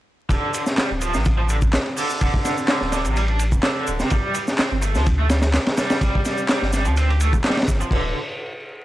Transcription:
0.29 D1 D3, kick, ride, shaker
0.54 D3, ride, shaker
0.66 snare, shaker
0.78 G3, snare, clap, ride, shaker
0.91 D1
1.01 F3, ride, shaker
1.14 A1 C3, snare, shaker
1.25 kick, ride, shaker
1.39 F3
1.49 D3, ride, shaker
1.62 kick, shaker
1.73 snare, clap, ride, shaker
1.86 ride
1.97 D3, open hi-hat, shaker
2.10 shaker
2.21 D1 D3, kick, ride, shaker
2.34 kick
2.45 snare, ride, shaker
2.58 shaker
2.68 D3, snare, clap, ride, shaker
2.81 D1, snare
2.92 D3, snare, ride, shaker
3.04 A1 C3, ride, shaker
3.16 G3, ride, shaker
3.28 D4, ride
3.39 ride, shaker
3.52 D1, kick, shaker
3.63 D3, snare, clap, ride, shaker
3.87 D1, ride, shaker
4.00 C3, snare, shaker
4.10 G1 G3, kick, ride, shaker
4.34 G3, ride, shaker
4.47 snare, shaker
4.59 C4, snare, clap, ride, shaker
4.71 G1
4.82 A3, ride, shaker
4.95 D2 F3, snare, shaker
5.06 kick, ride, shaker
5.19 A3
5.29 G3, snare, ride, shaker
5.42 snare, ride, shaker
5.53 snare, clap, ride, shaker
5.66 snare, ride
5.77 G3, snare, ride, shaker
5.90 snare, ride, shaker
6.01 G1 G3, kick, ride, shaker
6.15 kick
6.25 snare, ride, shaker
6.38 shaker
6.49 G3, snare, clap, ride, shaker
6.62 G1, snare
6.73 G3, snare, ride, shaker
6.85 D2 F3, ride, shaker
6.97 C4, ride, shaker
7.10 G4, ride
7.20 A3, ride, shaker
7.33 G1, kick, shaker
7.44 G3, snare, clap, ride, shaker
7.50 snare, ride
7.57 snare, ride
7.62 snare, ride
7.68 G1, kick, ride, shaker
7.81 F3, shaker
7.91 D1 D3, kick, crash

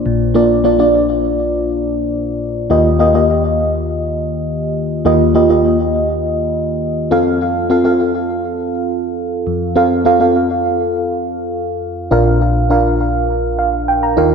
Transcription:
Already playing: A#3 D4 F4 C5 D5
0.06 A#1 A#2
0.34 A#3 D4 F4 D5
0.64 A#3 D4 F4 D5
0.79 A#3 D4 F4 D5
2.70 D#2 D#3 A#3 F4 G4 D#5
2.99 A#3 F4 G4 D#5
3.14 A#3 F4 G4 D#5
5.05 D#2 D#3 A#3 F4 G4 D#5
5.34 A#3 F4 G4 D#5
5.49 A#3 F4 G4 D#5
7.11 F2 C4 F4 A4 F5
7.70 C4 F4 A4 F5
7.84 C4 F4 A4 F5
9.47 F2
9.75 C4 F4 A4 F5
10.05 C4 F4 A4 F5
10.20 C4 F4 A4 F5
12.11 A#1 A#2 D4 F4 A#4 F5
12.70 D4 F4 A#4 F5
13.59 F5
13.88 G5
14.03 A#5
14.17 D#2 D#3 D#4 F4 A#4 F5

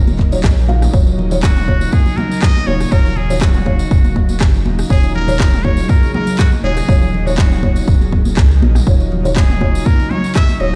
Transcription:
Already playing: D#1 C#3 F#3 A#3 D#4 F4 A#4 C#5
0.07 tambourine, muted conga, high conga
0.19 kick, clap, high conga
0.32 F#3 D#4 F4 C#5, tambourine, muted conga, high conga
0.44 A#1, kick, cross-stick, clap, tambourine
0.57 tambourine
0.68 F#3 D#4 F4 F5, muted conga, high conga
0.82 cross-stick, mid tom, tambourine
0.93 D#1 F#3 D#4 F4 C#5, kick, tambourine, muted conga
1.06 tambourine, low conga
1.19 muted conga, low conga
1.31 F#3 D#4 F4 C#5, tambourine, low conga
1.43 F#4, kick, cross-stick, clap, mid tom, tambourine
1.56 mid tom, tambourine, muted conga
1.68 F#3 D#4 F4 C#5, kick, high conga
1.81 tambourine, muted conga
1.92 G#4, kick, tambourine, high conga
2.06 tambourine, muted conga
2.17 A#4, mid tom, high conga, low conga
2.31 tambourine, muted conga
2.42 D#5, kick, cross-stick, clap, tambourine
2.56 tambourine, high conga
2.67 D#1 F#3 D#4 F4 C#5, muted conga, high conga
2.80 cross-stick, tambourine
2.92 D#1 F#3 D#4 F4 A#4 C#5, kick, tambourine, muted conga
3.06 tambourine, low conga
3.16 G#4, muted conga, low conga
3.30 F#3 D#4 F4 C#5, tambourine, low conga
3.41 F#4, kick, cross-stick, clap, mid tom, tambourine
3.54 mid tom, tambourine, muted conga
3.66 F#3 D#4 C#5 F5, kick, high conga
3.79 tambourine, muted conga
3.91 D#1, kick, tambourine, low conga
4.04 tambourine, muted conga, high conga
4.16 kick, high conga
4.29 tambourine, muted conga, high conga
4.40 F#1, kick, cross-stick, clap, tambourine
4.54 tambourine
4.65 D#1, muted conga, high conga
4.79 cross-stick, tambourine
4.90 D#1 F#3 D#4 F4 G#4 C#5, kick, tambourine, muted conga
5.03 tambourine, low conga
5.15 A#4, muted conga, low conga
5.28 F#3 D#4 F4 C#5, tambourine, low conga
5.39 kick, cross-stick, clap, mid tom, tambourine
5.53 mid tom, tambourine, muted conga
5.64 F#3 D#4 F4 C#5, kick, high conga
5.77 tambourine, muted conga
5.89 A#4, kick, tambourine, high conga
6.03 tambourine, muted conga
6.14 A#4, mid tom, high conga, low conga
6.27 tambourine, muted conga
6.39 F#4, kick, cross-stick, clap, tambourine
6.52 tambourine, high conga
6.64 D#1 F#3 D#4 F4 G#4 C#5, muted conga, high conga
6.77 cross-stick, tambourine
6.88 D#1 F#3 D#4 F4 C#5, kick, tambourine, muted conga
7.02 tambourine, low conga
7.13 muted conga, low conga
7.27 F#3 D#4 F4 F#4 C#5, tambourine, low conga
7.38 F#4, kick, cross-stick, clap, mid tom, tambourine
7.51 mid tom, tambourine, muted conga
7.63 F#3 D#4 F4 C#5, kick, high conga
7.76 tambourine, muted conga
7.87 D#1, kick, tambourine, low conga
8.01 tambourine, muted conga, high conga
8.12 kick, high conga
8.25 tambourine, muted conga, high conga
8.37 C#2, kick, cross-stick, clap, tambourine
8.51 tambourine
8.62 A#1, muted conga, high conga
8.75 cross-stick, mid tom, tambourine
8.87 D#1 F#3 D#4 F4 C#5, kick, tambourine, muted conga
9.00 tambourine, low conga
9.12 muted conga, low conga
9.25 F#3 D#4 F4 C#5, tambourine, low conga
9.36 G#4, kick, cross-stick, clap, mid tom, tambourine
9.50 mid tom, tambourine, muted conga
9.61 F#3 D#4 F4 C#5, kick, high conga
9.75 tambourine, muted conga
9.86 A#4, kick, tambourine, high conga
10.00 tambourine, muted conga
10.11 C#5, mid tom, high conga, low conga
10.24 tambourine, muted conga
10.35 E5, kick, cross-stick, clap, tambourine
10.49 tambourine, high conga
10.60 D#1 F#3 D#4 F4 C#5 D#5, muted conga, high conga

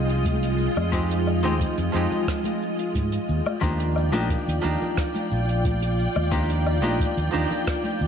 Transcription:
Already playing: C2 F3 G#3 C4 D#4 F4 G4 D#5 G5
0.09 closed hi-hat, cabasa
0.25 kick, closed hi-hat, high conga, cabasa
0.43 closed hi-hat, cabasa
0.58 cabasa
0.76 F2, high conga, cabasa, low woodblock
0.92 F3 G#3 C4 D#4 G4, kick, closed hi-hat, cabasa
1.11 closed hi-hat, cabasa
1.27 cabasa, low woodblock
1.43 D#2 F3 G#3 C4 D#4 G4, closed hi-hat, high conga, cabasa
1.60 kick, closed hi-hat, low conga, cabasa
1.78 F2, closed hi-hat, cabasa
1.92 F2 F3 G#3 C4 D#4, cabasa
1.96 G4
2.11 low conga, cabasa
2.27 kick, cross-stick, closed hi-hat, cabasa
2.44 closed hi-hat, high conga, cabasa
2.62 cabasa
2.79 closed hi-hat, cabasa
2.94 G#2, kick, closed hi-hat, high conga, cabasa
3.12 closed hi-hat, cabasa
3.29 D#2 F4 D5 G5, cabasa
3.46 high conga, cabasa, low woodblock
3.61 D#2 F3 A#3 D4 D#4 G4, kick, closed hi-hat, cabasa
3.80 closed hi-hat, cabasa
3.96 cabasa, low woodblock
4.12 A#1 F3 A#3 D4 D#4 G4, closed hi-hat, high conga, cabasa
4.30 kick, closed hi-hat, low conga, cabasa
4.47 D#2, closed hi-hat, cabasa
4.61 D#2 F3 A#3 D4 D#4, high conga, low conga, cabasa
4.66 G4
4.82 low conga, cabasa
4.97 kick, cross-stick, closed hi-hat, cabasa
5.15 closed hi-hat, high conga, cabasa
5.31 A#1, cabasa
5.49 closed hi-hat, cabasa
5.65 kick, closed hi-hat, high conga, cabasa
5.82 closed hi-hat, cabasa
5.99 cabasa
6.16 D#2, high conga, cabasa, low woodblock
6.31 F3 A#3 D4 D#4 G4, kick, closed hi-hat, cabasa
6.50 closed hi-hat, cabasa
6.66 cabasa, low woodblock
6.82 A#1 F3 A#3 D4 D#4 G4, closed hi-hat, high conga, cabasa
6.99 kick, closed hi-hat, low conga, cabasa
7.17 D#2, closed hi-hat, cabasa
7.31 D#2 F3 A#3 D4 D#4, low conga, cabasa
7.36 G4
7.51 closed hi-hat, low conga, cabasa
7.67 kick, cross-stick, closed hi-hat, cabasa
7.84 closed hi-hat, high conga, cabasa
8.01 D#2, cabasa

